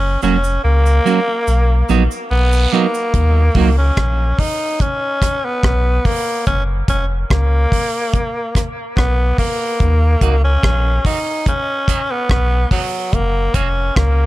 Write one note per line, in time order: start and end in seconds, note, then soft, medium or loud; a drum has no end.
0.00 0.17 F#1 loud
0.00 0.22 C#4 loud
0.22 0.58 F1 loud
0.22 0.35 F#3 medium
0.22 0.36 A#3 medium
0.22 0.61 C#4 medium
0.22 0.36 C#4 medium
0.22 0.36 F#4 medium
0.22 cabasa medium
0.44 cabasa medium
0.64 1.00 C#2 medium
0.64 2.00 A#3 loud
0.86 cabasa soft
1.05 1.18 F#3 medium
1.05 1.19 A#3 medium
1.05 1.19 C#4 medium
1.05 1.19 F#4 medium
1.05 cabasa medium
1.27 muted clean electric guitar stroke soft
1.47 1.83 B1 loud
1.47 cabasa medium
1.89 2.08 A#1 medium
1.89 2.02 F#3 medium
1.89 2.02 B3 medium
1.89 2.02 D#4 medium
1.89 2.03 F#4 medium
1.89 cabasa soft
2.11 cabasa medium
2.31 2.67 B1 medium
2.31 2.74 B3 medium
2.31 long guiro medium
2.52 cabasa medium
2.72 2.85 F#3 medium
2.72 3.77 A#3 medium
2.72 2.86 B3 medium
2.72 2.86 D#4 medium
2.72 2.86 F#4 medium
2.94 cabasa medium
3.14 3.50 D#2 loud
3.14 kick loud
3.14 hi-hat pedal medium
3.55 3.91 C#2 medium
3.55 3.69 F#3 medium
3.55 3.69 A#3 medium
3.55 3.69 D#4 medium
3.55 3.69 F#4 loud
3.55 kick medium
3.55 open hi-hat soft
3.78 4.41 C#4 medium
3.97 4.33 A#1 medium
3.97 kick loud
3.97 cross-stick loud
3.97 hi-hat pedal medium
4.39 4.82 D#4 medium
4.39 kick medium
4.39 open hi-hat medium
4.80 5.46 C#4 loud
4.80 kick loud
4.80 hi-hat pedal medium
5.22 kick medium
5.22 cross-stick medium
5.22 closed hi-hat medium
5.45 6.07 B3 loud
5.63 5.99 B1 medium
5.63 kick loud
5.63 cross-stick loud
6.05 6.46 A#3 medium
6.05 kick medium
6.05 open hi-hat medium
6.47 6.83 F#1 medium
6.47 6.63 C#4 loud
6.47 kick medium
6.47 hi-hat pedal medium
6.88 7.24 F1 medium
6.88 7.05 C#4 medium
6.88 kick medium
6.88 closed hi-hat medium
7.30 7.66 C#2 medium
7.30 8.66 A#3 medium
7.30 kick loud
7.30 cross-stick loud
7.72 kick medium
7.72 open hi-hat medium
8.14 kick loud
8.14 hi-hat pedal medium
8.55 kick medium
8.55 cross-stick medium
8.55 closed hi-hat medium
8.97 9.33 B1 medium
8.97 9.35 B3 medium
8.97 kick loud
8.97 cross-stick loud
9.38 10.40 A#3 medium
9.38 kick medium
9.38 open hi-hat medium
9.80 10.16 D#2 loud
9.80 kick loud
9.80 hi-hat pedal medium
10.21 10.57 C#2 medium
10.21 10.34 F#3 medium
10.21 10.35 A#3 medium
10.21 10.35 D#4 medium
10.21 10.35 F#4 medium
10.21 kick medium
10.21 closed hi-hat medium
10.45 11.07 C#4 loud
10.63 10.99 A#1 medium
10.63 kick loud
10.63 cross-stick loud
11.05 11.18 F#3 medium
11.05 11.18 A#3 medium
11.05 11.18 D#4 medium
11.05 11.47 D#4 medium
11.05 11.18 F#4 medium
11.05 kick medium
11.05 open hi-hat medium
11.27 muted clean electric guitar stroke soft
11.46 12.13 C#4 loud
11.46 kick loud
11.46 hi-hat pedal medium
11.88 12.01 F#3 medium
11.88 12.01 B3 medium
11.88 12.01 D#4 medium
11.88 12.02 F#4 medium
11.88 kick medium
11.88 closed hi-hat medium
12.11 12.71 B3 loud
12.30 12.66 B1 medium
12.30 kick loud
12.30 cross-stick loud
12.71 12.84 F#3 medium
12.71 13.15 F#3 medium
12.71 12.84 B3 loud
12.71 12.85 D#4 medium
12.71 12.85 F#4 medium
12.71 kick medium
12.71 open hi-hat medium
13.13 13.49 F#1 loud
13.13 13.56 A#3 loud
13.13 kick medium
13.13 hi-hat pedal medium
13.54 13.90 F1 medium
13.54 13.67 F#3 medium
13.54 13.68 A#3 medium
13.54 13.98 C#4 medium
13.54 13.68 C#4 medium
13.54 13.68 F#4 medium
13.54 kick medium
13.54 closed hi-hat medium
13.96 14.26 C#2 medium
13.96 14.26 A#3 medium
13.96 kick loud
13.96 cross-stick loud